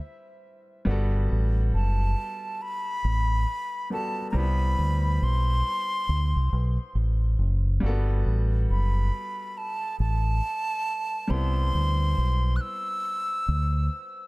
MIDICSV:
0, 0, Header, 1, 4, 480
1, 0, Start_track
1, 0, Key_signature, 1, "major"
1, 0, Tempo, 869565
1, 480, Time_signature, 4, 2, 24, 8
1, 7879, End_track
2, 0, Start_track
2, 0, Title_t, "Flute"
2, 0, Program_c, 0, 73
2, 965, Note_on_c, 0, 81, 85
2, 1445, Note_on_c, 0, 83, 98
2, 1454, Note_off_c, 0, 81, 0
2, 2163, Note_off_c, 0, 83, 0
2, 2169, Note_on_c, 0, 81, 85
2, 2361, Note_off_c, 0, 81, 0
2, 2378, Note_on_c, 0, 82, 72
2, 2410, Note_on_c, 0, 83, 99
2, 2418, Note_off_c, 0, 82, 0
2, 2888, Note_on_c, 0, 84, 103
2, 2897, Note_off_c, 0, 83, 0
2, 3845, Note_off_c, 0, 84, 0
2, 4805, Note_on_c, 0, 83, 81
2, 5285, Note_on_c, 0, 81, 77
2, 5294, Note_off_c, 0, 83, 0
2, 5516, Note_off_c, 0, 81, 0
2, 5519, Note_on_c, 0, 81, 101
2, 6240, Note_on_c, 0, 84, 103
2, 6248, Note_off_c, 0, 81, 0
2, 6934, Note_on_c, 0, 90, 72
2, 6943, Note_off_c, 0, 84, 0
2, 6961, Note_on_c, 0, 88, 104
2, 6969, Note_off_c, 0, 90, 0
2, 7879, Note_off_c, 0, 88, 0
2, 7879, End_track
3, 0, Start_track
3, 0, Title_t, "Grand piano"
3, 0, Program_c, 1, 0
3, 0, Control_c, 1, 64, 127
3, 0, Note_on_c, 1, 55, 66
3, 0, Note_on_c, 1, 60, 56
3, 0, Note_on_c, 1, 64, 59
3, 0, Note_on_c, 1, 71, 69
3, 451, Note_off_c, 1, 55, 0
3, 457, Note_off_c, 1, 60, 0
3, 468, Note_off_c, 1, 71, 0
3, 469, Note_on_c, 1, 55, 77
3, 478, Note_on_c, 1, 59, 71
3, 480, Note_off_c, 1, 64, 0
3, 488, Control_c, 1, 64, 0
3, 490, Note_on_c, 1, 66, 72
3, 501, Note_on_c, 1, 69, 81
3, 588, Control_c, 1, 64, 127
3, 2133, Note_off_c, 1, 55, 0
3, 2138, Note_off_c, 1, 59, 0
3, 2144, Note_off_c, 1, 66, 0
3, 2149, Note_off_c, 1, 69, 0
3, 2154, Note_on_c, 1, 55, 48
3, 2160, Note_on_c, 1, 59, 45
3, 2166, Note_on_c, 1, 66, 43
3, 2171, Note_on_c, 1, 69, 54
3, 2380, Note_off_c, 1, 55, 0
3, 2388, Note_on_c, 1, 55, 67
3, 2397, Note_on_c, 1, 60, 56
3, 2400, Note_off_c, 1, 59, 0
3, 2403, Note_off_c, 1, 66, 0
3, 2406, Note_off_c, 1, 69, 0
3, 2407, Control_c, 1, 64, 0
3, 2409, Note_on_c, 1, 64, 58
3, 2421, Note_on_c, 1, 59, 69
3, 2498, Control_c, 1, 64, 127
3, 4292, Note_off_c, 1, 55, 0
3, 4297, Note_off_c, 1, 60, 0
3, 4303, Note_off_c, 1, 64, 0
3, 4307, Note_on_c, 1, 55, 76
3, 4309, Note_off_c, 1, 59, 0
3, 4317, Note_on_c, 1, 58, 59
3, 4328, Control_c, 1, 64, 0
3, 4328, Note_on_c, 1, 66, 69
3, 4340, Note_on_c, 1, 69, 84
3, 4353, Note_on_c, 1, 59, 71
3, 4363, Note_off_c, 1, 58, 0
3, 4438, Control_c, 1, 64, 127
3, 6211, Note_off_c, 1, 55, 0
3, 6221, Note_off_c, 1, 66, 0
3, 6224, Note_on_c, 1, 55, 66
3, 6227, Note_off_c, 1, 69, 0
3, 6234, Note_off_c, 1, 59, 0
3, 6235, Note_on_c, 1, 60, 56
3, 6246, Control_c, 1, 64, 0
3, 6246, Note_on_c, 1, 64, 60
3, 6258, Note_on_c, 1, 59, 71
3, 6344, Control_c, 1, 64, 127
3, 7879, Note_off_c, 1, 55, 0
3, 7879, Note_off_c, 1, 59, 0
3, 7879, Note_off_c, 1, 60, 0
3, 7879, Note_off_c, 1, 64, 0
3, 7879, End_track
4, 0, Start_track
4, 0, Title_t, "Fingered electric bass"
4, 0, Program_c, 2, 33
4, 479, Note_on_c, 2, 31, 96
4, 698, Note_off_c, 2, 31, 0
4, 724, Note_on_c, 2, 33, 87
4, 941, Note_off_c, 2, 33, 0
4, 960, Note_on_c, 2, 30, 80
4, 1179, Note_off_c, 2, 30, 0
4, 1681, Note_on_c, 2, 33, 87
4, 1900, Note_off_c, 2, 33, 0
4, 2398, Note_on_c, 2, 36, 93
4, 2618, Note_off_c, 2, 36, 0
4, 2642, Note_on_c, 2, 38, 82
4, 2860, Note_off_c, 2, 38, 0
4, 2882, Note_on_c, 2, 35, 81
4, 3100, Note_off_c, 2, 35, 0
4, 3362, Note_on_c, 2, 38, 86
4, 3495, Note_off_c, 2, 38, 0
4, 3510, Note_on_c, 2, 36, 84
4, 3594, Note_off_c, 2, 36, 0
4, 3603, Note_on_c, 2, 35, 89
4, 3736, Note_off_c, 2, 35, 0
4, 3837, Note_on_c, 2, 33, 83
4, 4058, Note_off_c, 2, 33, 0
4, 4078, Note_on_c, 2, 30, 82
4, 4298, Note_off_c, 2, 30, 0
4, 4322, Note_on_c, 2, 31, 94
4, 4540, Note_off_c, 2, 31, 0
4, 4562, Note_on_c, 2, 33, 87
4, 4780, Note_off_c, 2, 33, 0
4, 4804, Note_on_c, 2, 30, 80
4, 5021, Note_off_c, 2, 30, 0
4, 5520, Note_on_c, 2, 33, 86
4, 5739, Note_off_c, 2, 33, 0
4, 6241, Note_on_c, 2, 36, 105
4, 6459, Note_off_c, 2, 36, 0
4, 6483, Note_on_c, 2, 38, 91
4, 6700, Note_off_c, 2, 38, 0
4, 6724, Note_on_c, 2, 35, 84
4, 6941, Note_off_c, 2, 35, 0
4, 7443, Note_on_c, 2, 38, 86
4, 7660, Note_off_c, 2, 38, 0
4, 7879, End_track
0, 0, End_of_file